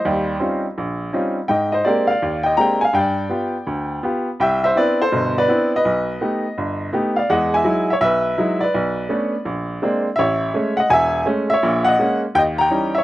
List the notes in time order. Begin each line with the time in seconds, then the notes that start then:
Already playing: C5 D#5
0.05 D#2 G3
0.40 G3 C4 C#4 D#4 F4
0.78 A#1
1.13 G3 C4 C#4 D#4 F4
1.48 G#2 D#5 G5
1.72 C5 D#5
1.85 G#3 A#3 C4 D4 G4 A#4 D5
2.07 D5 F5
2.22 D#2
2.43 D#5 G5
2.57 G#3 A#3 C4 D4 G4 A#5
2.61 G5
2.81 F5 G#5
2.93 G2 G5
2.98 D5
3.30 B3 F4 G4
3.67 D2
4.03 B3 F4 G4
4.40 C2 E5 G5
4.64 C5 E5
4.76 B3 C4 D4 E4 B4 D5
5.02 A4 C5
5.12 G1 B2
5.38 B4 D5
5.48 B3 C4 D4 E4
5.76 B4 D#5
5.85 B1
6.21 A3 B3 D#4 G4
6.58 G1
6.93 A3 B3 D#4 G4
7.16 D5 F5
7.30 E2 G#3 D#5 F#5
7.54 E5 G#5
7.64 F#3 G#3 D#4 E4
7.90 C#5 E5
8.01 B1 B4 E5
8.38 F#3 G#3 D#4 E4
8.61 B4 D5
8.74 B1
9.09 A3 B3 C#4 D4
9.45 A#1
9.82 G#3 A#3 C4 D4
10.16 A1 C#5 E5
10.54 G#3 A3 C#4
10.77 D#5 F#5
10.90 E1 E5 G#5
11.26 G#3 A3 C#4
11.50 C#5 E5
11.63 A#1 A#2
11.85 D#5 F#5
11.99 G#3 A#3 C#4
12.35 D#2 D#5 G5
12.58 G5 A#5
12.70 E3 G3 C#4 D#4
12.95 C#5 E5